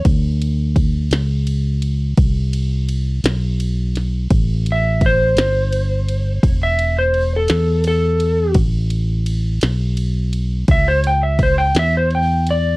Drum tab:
RD |xxxxxxxxxxxx|xxxxxxxxxxxx|xxxxxxxxxxxx|
SD |---o-----o-o|---o-----o--|---o-----o--|
BD |o-o---o-----|o-o---o-----|o-----o-o---|